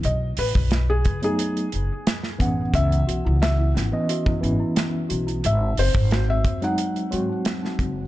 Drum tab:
HH |x-o-x-xxxxx-x-x-|xxx-x-x-x-x-x-xx|x-o-x-xxxxx-x-x-|
SD |----o-------oo--|----o-o-----o---|----o-------oo--|
BD |---o--o-------o-|o--------o------|---o--o-------o-|